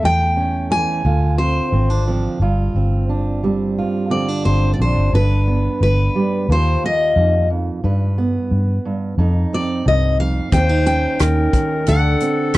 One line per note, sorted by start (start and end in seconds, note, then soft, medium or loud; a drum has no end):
0.00 1.01 E2 medium
0.00 0.70 A3 soft
0.00 1.01 A4 medium
0.04 0.85 E2 medium
0.04 0.71 G5 medium
0.37 1.01 C#4 soft
0.70 1.01 E3 soft
0.70 1.01 A3 soft
0.70 1.36 G#5 medium
1.05 1.59 D2 medium
1.05 2.37 D3 medium
1.05 2.41 F4 medium
1.38 1.72 C4 soft
1.38 2.03 C5 medium
1.72 2.26 G#1 medium
1.72 1.90 C4 soft
1.90 2.41 D4 soft
2.07 2.37 F3 soft
2.07 2.37 C4 soft
2.40 2.67 G1 medium
2.40 5.10 G2 medium
2.40 3.77 F4 soft
2.74 3.82 G1 medium
2.74 3.43 C4 soft
3.09 4.10 D4 soft
3.43 5.10 G3 soft
3.43 4.09 C4 soft
3.78 5.14 F4 medium
4.10 5.09 D3 soft
4.10 4.28 C4 soft
4.10 4.45 D5 medium
4.28 4.78 D4 soft
4.45 4.73 G1 medium
4.45 5.09 C4 soft
4.45 4.73 C5 medium
4.73 4.80 D5 soft
4.79 4.95 A#1 medium
4.79 5.10 D4 soft
4.79 5.15 C5 medium
4.97 5.12 G1 medium
5.12 5.67 G1 medium
5.12 6.45 G2 medium
5.12 6.45 D4 soft
5.12 5.82 B4 medium
5.47 6.45 B3 soft
5.81 6.08 G1 medium
5.81 6.52 B4 medium
6.16 6.45 G3 soft
6.49 6.76 D#2 medium
6.49 7.15 D#2 medium
6.49 7.81 F4 medium
6.49 6.85 C5 medium
6.84 7.80 A#3 soft
6.84 7.48 D#5 medium
7.16 7.50 D#2 soft
7.16 7.70 F2 medium
7.50 7.83 F2 medium
7.84 8.51 G2 medium
7.84 8.37 G2 medium
7.84 9.15 B4 medium
8.18 9.15 B3 soft
8.51 8.78 G2 medium
8.85 9.18 G2 medium
9.18 9.45 F2 medium
9.18 9.85 F2 medium
9.18 10.49 D#4 medium
9.53 10.49 C4 soft
9.53 9.88 D5 medium
9.86 10.39 C2 medium
9.86 10.19 G2 medium
9.86 10.20 D#5 medium
10.19 10.51 F2 medium
10.19 10.51 F5 medium
10.52 11.87 D#2 medium
10.52 11.06 D#2 medium
10.52 10.69 C4 medium
10.52 11.22 C5 loud
10.52 10.85 G5 medium
10.52 kick medium
10.52 closed hi-hat medium
10.69 11.87 D#4 soft
10.86 11.83 C#4 soft
10.86 11.88 G5 medium
10.86 closed hi-hat soft
11.19 11.47 D#2 medium
11.19 11.89 A#4 medium
11.19 cross-stick medium
11.19 closed hi-hat medium
11.53 11.87 D#3 medium
11.53 kick medium
11.53 closed hi-hat soft
11.86 12.14 D2 medium
11.86 12.58 D3 medium
11.86 12.58 D4 medium
11.86 12.58 A4 medium
11.86 12.57 F#5 medium
11.86 closed hi-hat medium
12.20 12.58 C4 medium
12.20 closed hi-hat soft
12.54 12.58 A1 medium
12.54 cross-stick medium
12.54 closed hi-hat medium